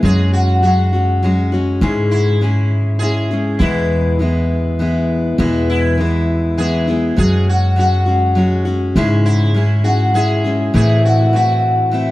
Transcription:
0.03 F#2 F#3 G#3 C#4 F#4 G#4
0.33 F#4
0.63 F#3 G#3 C#4 F#4
0.93 G#3 C#4 F#4
1.23 F#3 G#3 C#4 F#4
1.52 G#3 C#4 F#4
1.81 G#2 C#3 G#3 C#4 E4 G#4
2.11 E4
2.41 G#3 C#4 E4 G#4
2.99 G#3 C#4 E4 G#4
3.03 G#4
3.31 G#3 C#4 E4 G#4
3.59 E2 B2 E3 G#3 B3 E4
4.19 E3 G#3 B3 E4
4.79 E3 G#3 B3 E4
5.38 E2 B2 E3 G#3 B3 E4
5.70 E4
5.98 E3 G#3 B3 E4
6.58 E3 G#3 B3 E4 G#4
6.87 E3 G#3 B3 E4
7.16 F#2 F#3 G#3 C#4 F#4 G#4
7.49 F#4
7.76 F#3 G#3 C#4 F#4
8.06 G#3 C#4 F#4
8.35 F#3 G#3 C#4 F#4
8.65 G#3 C#4 F#4
8.96 G#2 C#3 G#3 C#4 E4 G#4
9.26 E4
9.54 G#3 C#4 E4 G#4
9.84 G#3 C#4 E4 F#4 G#4
10.14 G#3 C#4 E4 G#4
10.44 G#3 C#4 E4 G#4
10.74 A2 E3 A3 C4 E4 G#4
11.05 F#4
11.33 E3 A3 C4 E4 F#4
11.91 E3 A3 C4 E4

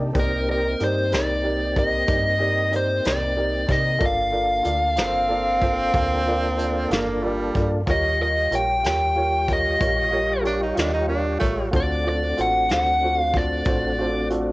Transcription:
Already playing: C3 A#3 D4 D#4 G4 A5
0.12 C2 A#3 C4 D#4 G4 A#4 D5, kick, closed hi-hat
0.20 A#4
0.47 D#4 G4 A#4 D5
0.51 A#4
0.80 G2 D#4 G4 A#4 C5 D5, closed hi-hat
1.11 C2 D#4 G4 A#4 D5, snare, closed hi-hat
1.44 D#4 G4 A#4 D5
1.76 D#4 G4 A#4 D5 D#5, kick, closed hi-hat
2.07 G2 D#4 G4 A#4 D5, kick, closed hi-hat
2.39 D#4 G4 A#4 D5
2.71 D#4 G4 A#4 D5, closed hi-hat
2.76 C5
3.04 C2 D#4 G4 A#4 D5, snare, closed hi-hat
3.35 D#4 G4 A#4 D5
3.66 C3 D#4 G4 A#4 D5, kick, closed hi-hat
3.71 D#5, snare
3.98 G1 A#3 D4 F4 A4 A#4 D5, kick, closed hi-hat
4.06 F5
4.31 F4 A4 A#4 D5
4.63 D2 F4 A4 A#4 D5, closed hi-hat
4.96 G1 C4 F4 A4 A#4 C5, snare, closed hi-hat
5.28 F4 A4 A#4 D5
5.61 F4 A4 A#4 C5, kick, closed hi-hat
5.93 D2 F4 A4 A#4 F5, kick, closed hi-hat
6.26 F4 A4 A#4 D5
6.58 F4 A4 A#4 D5, closed hi-hat
6.90 G1 A#3 F4 A4 A#4 F5, snare, closed hi-hat
7.22 G3 F4 A4 A#4 D5
7.55 G2 F4 A4 A#4 D5, kick, closed hi-hat
7.86 D#2 G3 F4 G4 A#4 C#5, kick, closed hi-hat
7.91 D#5
8.19 F4 G4 A#4 D#5
8.51 A#1 F4 G4 A#4 C#5 G5, closed hi-hat
8.83 D#2 F4 G4 A#4 C#5 G5, snare, closed hi-hat
9.15 F4 G4 A#4 C#5
9.48 F4 G4 A#4 C#5, kick, closed hi-hat
9.53 D#5
9.79 A#1 F4 G4 A#4 C#5, kick, closed hi-hat
10.11 F4 G4 A#4 C#5
10.42 F4 G4 A#4 C#5, closed hi-hat
10.46 D4
10.63 D#4
10.75 D#2 D4 F4 G4 A#4 D#5, snare, closed hi-hat
10.94 D#4
11.07 D4 F4 G4 A#4 C#5
11.39 A1 A3 F4 G4 A#4 C#5, kick, closed hi-hat
11.71 D2 A3 C4 D4 F4 F#4 A4 C5, kick, closed hi-hat
11.76 D5
12.04 F4 F#4 A4 C5
12.09 D5
12.37 A1 F4 F#4 A4 C5 F#5, closed hi-hat
12.69 D2 F4 F#4 A4 C5 F#5, snare, closed hi-hat
13.03 F4 F#4 A4 C5
13.18 F5
13.34 F4 F#4 A4 C5 D5, kick, closed hi-hat
13.65 A1 F4 F#4 A4 C5, kick, closed hi-hat
13.98 F4 F#4 A4 C5
14.30 F4 F#4 A4 D5, closed hi-hat

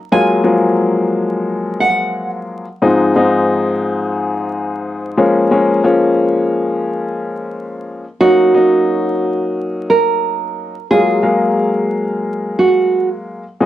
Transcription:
0.12 F#3 G#3 A#3 F4 G#5
0.44 F3 F#3 G#3 A#3
1.80 F#5
2.82 G#2 F3 G#3 C4 D#4
3.16 G#2 F3 G#3 C4 D#4
5.17 F3 G#3 A#3 C#4
5.51 F3 G#3 A#3 C#4
5.84 F3 G#3 A#3 C#4
8.21 F#3 A#3 C#4 D#4 F#4
8.54 F#3 A#3 C#4 D#4
9.90 A#4
10.91 F#3 G#3 A#3 F4 G#4
11.22 F#3 G#3 A#3 F5
12.59 F#4
13.60 G#2 F3 G#3 C4 D#4

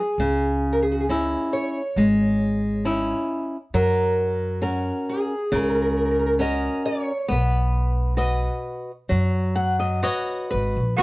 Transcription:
Already playing: G#4
0.18 C#2 C#3
0.73 A#4
0.82 G#4
0.91 F#4
1.00 G#4
1.09 C#4 D#4 E4
1.53 C#5
1.96 G#1 G#3
2.85 C#4 D#4 E4
3.74 F#2 F#3 A#4
4.62 C#4 F#4 A#4
5.09 G#4
5.52 C#2 C#3 A#4
5.62 A#4
5.68 A#4
5.74 A#4
5.82 A#4
5.89 A#4
5.97 A#4
6.05 A#4
6.11 A#4
6.19 A#4
6.26 A#4
6.39 C#4 F#4 A#4 D#5
6.85 C#5
7.28 B1 B3 B4
8.17 F#4 B4 D#5
9.09 F#2 F#3
9.56 F#5
9.80 D#5
10.03 F#4 B4 C#5 D#5
10.51 G#1 B4
10.77 A#1
10.98 B1 B3 F#4

